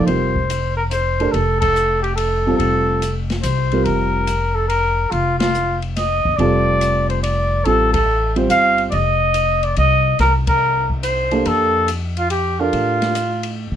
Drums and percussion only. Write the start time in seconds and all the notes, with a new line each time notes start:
0.07 ride
0.36 kick
0.50 hi-hat pedal, ride
0.91 hi-hat pedal, ride
1.20 ride
1.34 ride
1.62 kick, ride
1.76 hi-hat pedal
2.04 ride
2.17 ride
2.60 ride
3.02 hi-hat pedal, ride
3.30 snare, ride
3.43 hi-hat pedal, ride
3.71 ride
3.85 ride
4.27 hi-hat pedal, ride
4.70 ride
5.12 ride
5.40 snare, ride
5.54 hi-hat pedal
5.82 ride
5.96 snare, ride
6.25 kick
6.39 ride
6.81 hi-hat pedal, ride
7.10 ride
7.24 ride
7.65 ride
7.94 kick, ride
8.36 ride
8.50 hi-hat pedal, ride
8.78 ride
8.92 ride
9.34 hi-hat pedal, ride
9.63 ride
9.76 ride
10.19 snare, ride
10.47 kick, ride
10.90 kick
11.03 hi-hat pedal, ride
11.31 ride
11.45 ride
11.88 hi-hat pedal, ride
12.17 ride
12.30 ride
12.73 ride
13.02 snare, ride
13.15 hi-hat pedal, ride
13.43 ride